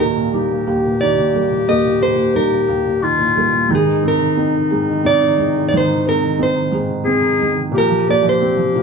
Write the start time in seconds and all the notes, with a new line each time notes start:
Already playing: D#2 A#2
0.00 D#3 A#3 A#4
0.17 A#2
0.33 G3 D#4 G4
0.51 A#2
0.67 D#2 G4
0.86 A#2
1.01 D#3 D#4 D5
1.18 A#2
1.34 G3 A#3
1.51 A#2
1.68 D#2 A#3 D#5
1.85 A#2
2.01 D#3 A#3 C5
2.16 A#2
2.35 G3 D#4 A#4
2.52 A#2
2.69 D#2 G4
2.86 A#2
3.02 D#3 D#4 F4
3.19 A#2
3.36 G3 A#3
3.53 A#2
3.69 G#2 D#3 D#4
3.75 G#4
3.86 D#3
4.02 G#3 C4
4.08 A#4
4.20 D#3
4.37 C4 D#4
4.55 D#3
4.70 G#2 G#4
4.89 D#3
5.04 C4 D5
5.24 D#3
5.38 G#3 D#4
5.56 D#3
5.69 D5
5.73 G#2 D#3
5.77 C5
5.89 D#3
6.06 G#3 C4 A#4
6.23 D#3
6.39 C4 D#4 C5
6.55 D#3
6.72 G#2 G#4
6.89 D#3
7.04 C4 G#4
7.22 D#3
7.37 G#3 D#4
7.54 D#3
7.72 A#2 F3 G4
7.78 A#4
7.89 F3
8.07 A#3 D5
8.23 F3
8.29 C5
8.41 C4
8.57 F3
8.75 A#2 F4